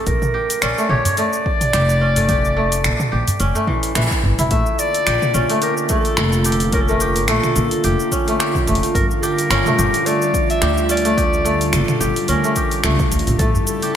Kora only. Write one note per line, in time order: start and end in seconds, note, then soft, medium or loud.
0.00 0.78 A3 medium
0.00 0.62 C#4 medium
0.00 0.34 G4 medium
0.34 0.90 G4 medium
0.62 2.01 C#4 medium
0.78 1.18 A3 medium
0.90 1.73 G4 medium
1.18 2.16 A3 medium
1.74 2.29 G4 medium
2.01 3.40 C#4 medium
2.17 2.56 A3 medium
2.29 3.12 G4 medium
2.57 3.55 A3 medium
3.12 4.53 G4 medium
3.40 5.14 C#4 medium
3.55 4.51 A3 medium
3.68 3.94 E3 medium
3.95 4.56 E3 medium
4.39 5.95 E4 medium
4.51 5.50 A3 medium
5.07 5.62 G4 medium
5.34 6.73 C#4 medium
5.50 5.90 A3 medium
5.62 6.45 G4 medium
5.90 6.89 A3 medium
6.45 7.01 G4 medium
6.73 8.12 C#4 medium
6.89 7.28 A3 medium
7.01 7.84 G4 medium
7.28 8.27 A3 medium
7.84 8.39 G4 medium
8.12 9.51 C#4 medium
8.28 8.67 A3 medium
8.39 9.23 G4 medium
8.67 9.66 A3 medium
9.23 9.78 G4 medium
9.51 10.89 C#4 medium
9.67 10.06 A3 medium
9.79 10.62 G4 medium
10.07 11.05 A3 medium
10.62 11.17 G4 medium
10.90 12.28 C#4 medium
11.05 11.44 A3 medium
11.17 12.00 G4 medium
11.45 12.44 A3 medium
12.00 12.56 G4 medium
12.29 13.96 C#4 medium
12.44 12.84 A3 medium
12.56 13.82 G4 medium
12.84 13.39 A3 medium
13.40 13.96 A3 medium
13.83 13.94 G4 medium